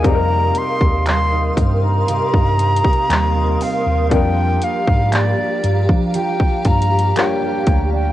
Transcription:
Already playing: steel-string acoustic guitar F3 A#3 D#4, ambient pad A#4 F5
0.02 tine electric piano F2, steel-string acoustic guitar C3 G4, grand piano G3 A#3 C4, flute A#5, ambient pad C6 D#6, kick, closed hi-hat
0.07 grand piano D#4 G#4
0.15 grand piano A#4
0.30 steel-string acoustic guitar D#4
0.55 steel-string acoustic guitar C4, flute C6, closed hi-hat
0.81 tine electric piano D#2, steel-string acoustic guitar G4, kick
1.06 steel-string acoustic guitar G3, flute C6, clap, closed hi-hat
1.32 steel-string acoustic guitar D#4
1.57 tine electric piano G2, steel-string acoustic guitar C4, kick, closed hi-hat
1.83 steel-string acoustic guitar D#4, flute A#5
2.08 tine electric piano G2, steel-string acoustic guitar C3 G4, closed hi-hat
2.34 tine electric piano G2, steel-string acoustic guitar D#4, kick
2.59 steel-string acoustic guitar C4, closed hi-hat
2.76 closed hi-hat
2.84 steel-string acoustic guitar G4, kick
2.93 closed hi-hat
3.10 tine electric piano D#2, steel-string acoustic guitar G3, clap, closed hi-hat
3.35 steel-string acoustic guitar D#4
3.61 steel-string acoustic guitar C4, flute F5, open hi-hat
3.86 tine electric piano D#2, steel-string acoustic guitar D#4
4.09 tine electric piano F2, steel-string acoustic guitar F3 G4, grand piano G3 A#3 D4, ambient pad G4 F5 A#5, kick, closed hi-hat
4.13 grand piano F4 A#4, flute G5
4.37 steel-string acoustic guitar D4
4.62 steel-string acoustic guitar A#3, flute F5, closed hi-hat
4.87 tine electric piano G#2, steel-string acoustic guitar G4, kick
5.13 steel-string acoustic guitar A#3, flute D5, clap, closed hi-hat
5.38 steel-string acoustic guitar D4
5.64 tine electric piano G2, steel-string acoustic guitar A#3, closed hi-hat
5.89 tine electric piano F3, steel-string acoustic guitar D4, kick
6.14 steel-string acoustic guitar F3 G4, flute G5, closed hi-hat
6.40 steel-string acoustic guitar D4, kick
6.65 tine electric piano G2, steel-string acoustic guitar A#3, flute A#5, kick, closed hi-hat
6.82 closed hi-hat
6.91 steel-string acoustic guitar G4
6.99 closed hi-hat
7.16 grand piano G3 A#3 D4 F4 C#5, steel-string acoustic guitar A#3, flute G5, clap, closed hi-hat
7.42 steel-string acoustic guitar D4
7.67 tine electric piano D2, steel-string acoustic guitar A#3, kick, closed hi-hat
7.93 steel-string acoustic guitar D4, flute G5

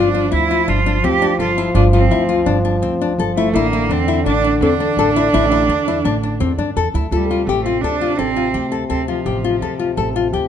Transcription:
Already playing: upright bass G1, french horn F3, cello D4
0.15 nylon-string guitar F4
0.32 upright bass D2, nylon-string guitar E4, cello E4
0.51 nylon-string guitar F4
0.68 upright bass G1, nylon-string guitar D4, cello F4
0.86 nylon-string guitar D4
1.03 upright bass D2, nylon-string guitar C4, cello G4
1.22 nylon-string guitar D4
1.39 upright bass G1, cello F4, nylon-string guitar A4
1.58 nylon-string guitar E4
1.75 upright bass G1, cello D4, nylon-string guitar F4
1.93 cello C4, nylon-string guitar F4
2.11 upright bass D2, nylon-string guitar E4
2.29 nylon-string guitar F4
2.46 upright bass G1, nylon-string guitar D4
2.65 nylon-string guitar D4
2.82 upright bass D2, nylon-string guitar C4
3.01 nylon-string guitar D4
3.18 upright bass G1, nylon-string guitar A4
3.36 cello A3, nylon-string guitar E4
3.53 upright bass A1, french horn D3, cello A#3, kalimba E4, nylon-string guitar E4
3.73 nylon-string guitar E4
3.89 upright bass E2, cello C4, nylon-string guitar D4
4.08 nylon-string guitar E4
4.25 upright bass A1, cello D4, nylon-string guitar D4
4.44 nylon-string guitar D4
4.61 upright bass E2, nylon-string guitar C4, cello D4, kalimba A4
4.80 nylon-string guitar D4
4.97 upright bass A1, nylon-string guitar A4
5.16 nylon-string guitar E4
5.34 upright bass A1, nylon-string guitar E4
5.52 nylon-string guitar E4
5.69 upright bass E2, nylon-string guitar D4
5.88 nylon-string guitar E4
6.05 upright bass A1, nylon-string guitar D4
6.23 nylon-string guitar D4
6.40 upright bass E2, nylon-string guitar C4
6.58 upright bass G2, nylon-string guitar D4
6.76 upright bass E2, nylon-string guitar A4
6.94 upright bass D2, nylon-string guitar E4
7.11 upright bass D2, french horn C3, cello G3, kalimba F4, nylon-string guitar A4
7.26 kalimba A4
7.31 nylon-string guitar F4
7.47 upright bass A1, cello A3, nylon-string guitar G4
7.64 cello C4, nylon-string guitar F4
7.82 upright bass D2, cello D4, nylon-string guitar A4
8.01 nylon-string guitar F4
8.18 upright bass A1, cello C4, nylon-string guitar A4
8.36 nylon-string guitar F4
8.54 upright bass D2, nylon-string guitar G4
8.72 nylon-string guitar A4
8.90 upright bass D2, cello C4, nylon-string guitar A4
9.08 cello F3, nylon-string guitar F4
9.26 upright bass A1, nylon-string guitar G4
9.44 nylon-string guitar F4
9.61 upright bass D2, nylon-string guitar A4
9.79 nylon-string guitar F4
9.97 upright bass A1, kalimba G4, nylon-string guitar A4
10.13 nylon-string guitar F4, kalimba C5
10.33 upright bass D2, nylon-string guitar G4

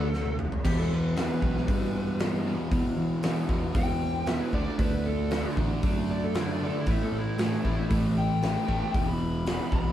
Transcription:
Already playing: picked electric bass D2, lead electric guitar A4
0.14 snare
0.26 high tom
0.39 mid tom
0.52 floor tom
0.64 picked electric bass E2, overdriven electric guitar E2 B2 E3, lead electric guitar G4, kick, crash
0.78 lead electric guitar A4
0.93 lead electric guitar B4
1.17 overdriven electric guitar E2 B2 E3, lead electric guitar B4, snare, open hi-hat
1.42 picked electric bass B1, overdriven electric guitar E2 B2 E3, kick
1.57 snare
1.68 overdriven electric guitar E2 B2 E3, picked electric bass G2, kick, open hi-hat
2.20 overdriven electric guitar E2 B2 E3, snare, open hi-hat
2.46 overdriven electric guitar E2 B2 E3
2.71 overdriven electric guitar E2 B2 E3, picked electric bass E2, kick, open hi-hat
2.97 picked electric bass E3
3.23 overdriven electric guitar E2 B2 E3, snare, open hi-hat
3.49 overdriven electric guitar E2 B2 E3, picked electric bass E2, kick
3.74 picked electric bass E2, overdriven electric guitar E2 B2 E3, lead electric guitar G5, kick, open hi-hat
4.26 overdriven electric guitar E2 B2 E3, lead electric guitar E5, snare, open hi-hat
4.41 lead electric guitar B4
4.53 picked electric bass D2, overdriven electric guitar D3 A3 D4, lead electric guitar D5, kick
4.78 picked electric bass D2, overdriven electric guitar D3 A3 D4, lead electric guitar B4, kick, open hi-hat
5.06 lead electric guitar A4
5.31 overdriven electric guitar D3 A3 D4, snare, open hi-hat
5.57 picked electric bass A1, overdriven electric guitar D3 A3 D4, kick
5.83 picked electric bass F#2, overdriven electric guitar D3 A3 D4, kick, open hi-hat
6.11 lead electric guitar D5
6.24 lead electric guitar A4
6.35 overdriven electric guitar D3 A3 D4, lead electric guitar E4, snare, open hi-hat
6.52 lead electric guitar D5
6.61 overdriven electric guitar D3 A3 D4, lead electric guitar A4
6.78 lead electric guitar E4
6.86 picked electric bass A1, overdriven electric guitar A2 E3 A3, kick, open hi-hat
6.90 lead electric guitar E5
7.03 lead electric guitar A4
7.12 picked electric bass A2
7.17 lead electric guitar E4
7.38 overdriven electric guitar A2 E3 A3, lead electric guitar E4, snare, open hi-hat
7.65 picked electric bass A1, overdriven electric guitar A2 E3 A3, kick
7.90 picked electric bass A1, overdriven electric guitar A2 E3 A3, kick, open hi-hat
8.18 lead electric guitar G5
8.43 overdriven electric guitar A2 E3 A3, snare, open hi-hat
8.68 picked electric bass A1, overdriven electric guitar A2 E3 A3, kick
8.94 picked electric bass E1, overdriven electric guitar E2 B2 E3, lead electric guitar G5, kick, open hi-hat
9.07 lead electric guitar B5
9.46 overdriven electric guitar E2 B2 E3, snare, open hi-hat
9.72 picked electric bass B1, overdriven electric guitar E2 B2 E3, lead electric guitar B5, kick

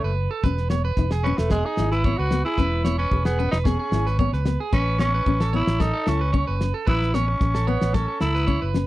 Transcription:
Already playing: tenor saxophone A3
0.04 fingered electric bass F#1, clean electric guitar B4
0.31 clean electric guitar A4
0.44 fingered electric bass E1, steel-string acoustic guitar C#4, clean electric guitar B4, kick, snare
0.57 snare
0.70 steel-string acoustic guitar B3, clean electric guitar C#5, snare
0.85 clean electric guitar B4
0.96 fingered electric bass E1, steel-string acoustic guitar D#4, kick, snare
1.11 clean electric guitar G#4, snare
1.23 tenor saxophone C#4, steel-string acoustic guitar C#4, clean electric guitar B4
1.38 fingered electric bass E1, tenor saxophone A3, snare
1.50 tenor saxophone G#3, steel-string acoustic guitar B3, clean electric guitar G#4, kick, snare
1.66 tenor saxophone D#4, clean electric guitar G#4
1.77 fingered electric bass G#1, steel-string acoustic guitar E4, snare
1.91 tenor saxophone E4, clean electric guitar B4, snare
2.04 steel-string acoustic guitar B3, clean electric guitar C#5, kick
2.17 fingered electric bass C#2, tenor saxophone F#4, clean electric guitar B4
2.31 steel-string acoustic guitar B3, snare
2.45 tenor saxophone E4, clean electric guitar G#4
2.57 fingered electric bass E1, steel-string acoustic guitar C#4, clean electric guitar B4, kick, snare
2.85 steel-string acoustic guitar B3, clean electric guitar C#5, snare
2.98 tenor saxophone C#4, clean electric guitar B4
3.11 fingered electric bass E1, steel-string acoustic guitar G#4, kick
3.25 tenor saxophone B3, clean electric guitar G#4, snare
3.39 steel-string acoustic guitar C#4, clean electric guitar B4
3.51 fingered electric bass E1, tenor saxophone D#4, snare
3.64 steel-string acoustic guitar B3, tenor saxophone C#4, clean electric guitar G#4, kick, snare
3.79 clean electric guitar G#4
3.92 fingered electric bass G#1, steel-string acoustic guitar E4, snare
4.06 clean electric guitar B4, snare
4.19 steel-string acoustic guitar B3, clean electric guitar C#5, kick
4.33 fingered electric bass C#2, clean electric guitar B4, snare
4.45 steel-string acoustic guitar B3, snare
4.60 clean electric guitar G#4
4.73 fingered electric bass A1, steel-string acoustic guitar C#4, tenor saxophone C#4, clean electric guitar B4, kick, snare
4.99 steel-string acoustic guitar B3, tenor saxophone C#4, clean electric guitar C#5, snare
5.14 clean electric guitar B4
5.26 fingered electric bass A1, steel-string acoustic guitar C#4, kick
5.40 clean electric guitar A4, snare
5.53 steel-string acoustic guitar B3, tenor saxophone E4, clean electric guitar C#5
5.67 fingered electric bass A1, snare
5.80 steel-string acoustic guitar A3, tenor saxophone D#4, clean electric guitar A4, kick, snare
5.94 clean electric guitar A4
6.07 fingered electric bass C#2, tenor saxophone C#4, steel-string acoustic guitar E4, snare
6.21 clean electric guitar B4
6.33 steel-string acoustic guitar C#4, clean electric guitar C#5, kick
6.47 fingered electric bass F#1, clean electric guitar B4
6.61 steel-string acoustic guitar C#4, snare
6.74 clean electric guitar A4
6.87 fingered electric bass A1, tenor saxophone E4, clean electric guitar B4, muted steel-string acoustic guitar stroke, kick
7.02 snare
7.14 steel-string acoustic guitar B3, tenor saxophone C#4, clean electric guitar C#5, snare
7.28 muted clean electric guitar stroke
7.40 fingered electric bass A1, steel-string acoustic guitar C#4, kick, snare
7.55 clean electric guitar A4, snare
7.67 steel-string acoustic guitar B3, tenor saxophone B3, clean electric guitar C#5
7.81 fingered electric bass A1, snare
7.94 steel-string acoustic guitar A3, tenor saxophone C#4, clean electric guitar A4, kick, snare
8.08 clean electric guitar A4
8.21 fingered electric bass C#2, tenor saxophone E4, steel-string acoustic guitar E4, snare
8.35 clean electric guitar B4, snare
8.47 steel-string acoustic guitar C#4, clean electric guitar C#5, kick
8.62 fingered electric bass F#1, clean electric guitar B4
8.74 steel-string acoustic guitar C#4, snare

